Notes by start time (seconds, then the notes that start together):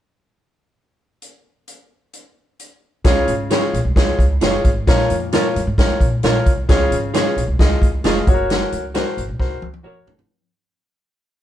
1.22 closed hi-hat
1.68 closed hi-hat
2.13 closed hi-hat
2.60 closed hi-hat
3.04 C#2 C#3 F4 G#4 C#5, kick, snare, closed hi-hat
3.28 G#1, closed hi-hat
3.51 F4 G#4 C#5, snare, closed hi-hat
3.73 A#1, closed hi-hat
3.85 C2
3.96 C#2 F4 G#4 C#5, kick, snare, closed hi-hat
4.19 C#2, kick, closed hi-hat
4.41 F#1 F4 G#4 C#5, snare, closed hi-hat
4.65 G#1, kick, closed hi-hat
4.87 A#1 A#2 F4 A#4 C#5, kick, snare, closed hi-hat
5.00 snare
5.10 F2, closed hi-hat
5.32 F4 A#4 C#5, snare, closed hi-hat
5.56 F#2, closed hi-hat
5.67 G#2
5.78 F4 A#4 C#5, kick, snare, closed hi-hat
5.90 muted upright bass stroke
6.01 A#2, kick, closed hi-hat
6.23 A#1 F4 A#4 C#5, snare, closed hi-hat
6.46 C2, kick, closed hi-hat
6.69 C#2 C#3 F4 G#4 C#5, kick, snare, closed hi-hat
6.91 G#1, closed hi-hat
7.14 F4 G#4 C#5, snare, closed hi-hat
7.37 A#1, closed hi-hat
7.48 C2
7.59 C#2 F4 G#4 D#5, kick, snare, closed hi-hat
7.82 C#2, kick, closed hi-hat
8.04 F1 F4 G#4 C#5 D#5, snare, closed hi-hat
8.27 F#1 F#4 G#4 C#5, kick, closed hi-hat
8.34 A#4
8.50 snare, closed hi-hat
8.72 C#2, closed hi-hat
8.94 F#4 A#4 C5 C#5, snare, closed hi-hat
9.17 G#1, closed hi-hat
9.28 A#1
9.39 C2 F#4 A#4 C5, kick, snare
9.62 C#2, high tom
9.74 high tom
9.83 F#1 F#4 A#4 C#5
10.07 F1, floor tom
10.19 floor tom